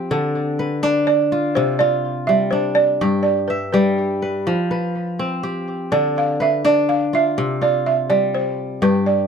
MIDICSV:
0, 0, Header, 1, 3, 480
1, 0, Start_track
1, 0, Tempo, 483481
1, 108, Time_signature, 12, 3, 24, 8
1, 9203, End_track
2, 0, Start_track
2, 0, Title_t, "Balafon"
2, 0, Program_c, 0, 12
2, 1062, Note_on_c, 0, 74, 85
2, 1542, Note_on_c, 0, 72, 84
2, 1560, Note_off_c, 0, 74, 0
2, 1778, Note_on_c, 0, 74, 88
2, 1793, Note_off_c, 0, 72, 0
2, 2254, Note_on_c, 0, 76, 95
2, 2278, Note_off_c, 0, 74, 0
2, 2484, Note_off_c, 0, 76, 0
2, 2488, Note_on_c, 0, 72, 75
2, 2730, Note_on_c, 0, 74, 94
2, 2746, Note_off_c, 0, 72, 0
2, 3186, Note_off_c, 0, 74, 0
2, 3204, Note_on_c, 0, 74, 79
2, 3440, Note_off_c, 0, 74, 0
2, 3452, Note_on_c, 0, 71, 62
2, 3686, Note_off_c, 0, 71, 0
2, 3698, Note_on_c, 0, 71, 62
2, 5106, Note_off_c, 0, 71, 0
2, 5876, Note_on_c, 0, 74, 82
2, 6097, Note_off_c, 0, 74, 0
2, 6135, Note_on_c, 0, 77, 88
2, 6371, Note_off_c, 0, 77, 0
2, 6371, Note_on_c, 0, 76, 82
2, 6609, Note_off_c, 0, 76, 0
2, 6611, Note_on_c, 0, 74, 82
2, 6840, Note_on_c, 0, 77, 87
2, 6849, Note_off_c, 0, 74, 0
2, 7083, Note_off_c, 0, 77, 0
2, 7097, Note_on_c, 0, 76, 82
2, 7570, Note_on_c, 0, 74, 73
2, 7578, Note_off_c, 0, 76, 0
2, 7808, Note_off_c, 0, 74, 0
2, 7808, Note_on_c, 0, 76, 76
2, 8024, Note_off_c, 0, 76, 0
2, 8038, Note_on_c, 0, 74, 85
2, 8282, Note_off_c, 0, 74, 0
2, 8285, Note_on_c, 0, 72, 74
2, 8725, Note_off_c, 0, 72, 0
2, 8765, Note_on_c, 0, 71, 70
2, 8981, Note_off_c, 0, 71, 0
2, 9000, Note_on_c, 0, 74, 68
2, 9203, Note_off_c, 0, 74, 0
2, 9203, End_track
3, 0, Start_track
3, 0, Title_t, "Kora"
3, 0, Program_c, 1, 46
3, 0, Note_on_c, 1, 53, 68
3, 0, Note_on_c, 1, 60, 70
3, 0, Note_on_c, 1, 67, 58
3, 0, Note_on_c, 1, 71, 57
3, 108, Note_on_c, 1, 50, 70
3, 110, Note_on_c, 1, 62, 61
3, 132, Note_off_c, 1, 71, 0
3, 158, Note_off_c, 1, 53, 0
3, 588, Note_on_c, 1, 71, 55
3, 648, Note_off_c, 1, 60, 0
3, 821, Note_off_c, 1, 62, 0
3, 825, Note_on_c, 1, 62, 70
3, 827, Note_off_c, 1, 62, 0
3, 827, Note_on_c, 1, 62, 60
3, 1024, Note_off_c, 1, 67, 0
3, 1311, Note_on_c, 1, 65, 60
3, 1554, Note_on_c, 1, 48, 70
3, 1598, Note_off_c, 1, 50, 0
3, 1613, Note_off_c, 1, 71, 0
3, 1787, Note_off_c, 1, 65, 0
3, 1791, Note_on_c, 1, 65, 58
3, 2272, Note_on_c, 1, 55, 63
3, 2494, Note_off_c, 1, 62, 0
3, 2507, Note_on_c, 1, 62, 57
3, 2990, Note_on_c, 1, 67, 58
3, 2991, Note_on_c, 1, 43, 70
3, 3039, Note_off_c, 1, 48, 0
3, 3039, Note_off_c, 1, 55, 0
3, 3294, Note_off_c, 1, 65, 0
3, 3475, Note_on_c, 1, 76, 55
3, 3707, Note_off_c, 1, 67, 0
3, 3709, Note_on_c, 1, 55, 72
3, 3711, Note_on_c, 1, 67, 57
3, 4174, Note_off_c, 1, 62, 0
3, 4193, Note_on_c, 1, 71, 55
3, 4435, Note_on_c, 1, 53, 66
3, 4481, Note_off_c, 1, 43, 0
3, 4481, Note_off_c, 1, 55, 0
3, 4495, Note_off_c, 1, 76, 0
3, 4670, Note_off_c, 1, 71, 0
3, 4674, Note_on_c, 1, 71, 56
3, 5113, Note_off_c, 1, 67, 0
3, 5157, Note_on_c, 1, 60, 66
3, 5394, Note_on_c, 1, 67, 57
3, 5874, Note_on_c, 1, 62, 64
3, 5876, Note_on_c, 1, 50, 69
3, 5895, Note_off_c, 1, 71, 0
3, 5922, Note_off_c, 1, 53, 0
3, 6355, Note_on_c, 1, 71, 53
3, 6415, Note_off_c, 1, 60, 0
3, 6596, Note_off_c, 1, 62, 0
3, 6600, Note_on_c, 1, 62, 66
3, 6602, Note_off_c, 1, 62, 0
3, 6602, Note_on_c, 1, 62, 61
3, 6796, Note_off_c, 1, 67, 0
3, 7081, Note_on_c, 1, 65, 56
3, 7325, Note_on_c, 1, 48, 70
3, 7362, Note_off_c, 1, 50, 0
3, 7384, Note_off_c, 1, 71, 0
3, 7556, Note_off_c, 1, 65, 0
3, 7560, Note_on_c, 1, 65, 52
3, 8040, Note_on_c, 1, 55, 65
3, 8270, Note_off_c, 1, 62, 0
3, 8755, Note_on_c, 1, 43, 69
3, 8757, Note_on_c, 1, 67, 65
3, 8801, Note_off_c, 1, 48, 0
3, 8801, Note_off_c, 1, 55, 0
3, 9063, Note_off_c, 1, 65, 0
3, 9203, Note_off_c, 1, 43, 0
3, 9203, Note_off_c, 1, 67, 0
3, 9203, End_track
0, 0, End_of_file